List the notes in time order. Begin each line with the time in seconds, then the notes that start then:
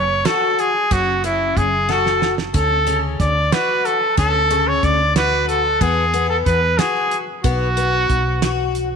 Already playing: F#1 C#5
0.25 F#4 A4, snare, closed hi-hat
0.59 G#4, closed hi-hat
0.91 F#1 C#4 F#4, kick, closed hi-hat
1.24 C#4 E4, closed hi-hat
1.57 F#1 G#4, kick, closed hi-hat
1.89 F#4 A4, snare
2.06 snare
2.22 snare
2.38 snare
2.54 D2 C#4 A4, kick, closed hi-hat
2.87 C#3, closed hi-hat
3.20 D2 D5, kick, snare, closed hi-hat
3.52 F#4 B4, snare, closed hi-hat
3.85 A4, closed hi-hat
4.17 D2 C#4 A4, kick, closed hi-hat
4.50 C#3, closed hi-hat
4.68 C#5
4.83 D2 D5, kick, closed hi-hat
5.16 F#4 B4, snare, closed hi-hat
5.49 A4, closed hi-hat
5.81 E2 B3 G#4, kick, closed hi-hat
6.14 B3, closed hi-hat
6.30 A4
6.46 E2 B4, kick, closed hi-hat
6.79 F#4 G#4, snare, closed hi-hat
7.11 closed hi-hat
7.44 B1 B3 F#4, kick, closed hi-hat
7.77 B3, closed hi-hat
8.10 B1, kick, closed hi-hat
8.42 F#4, snare, closed hi-hat
8.75 closed hi-hat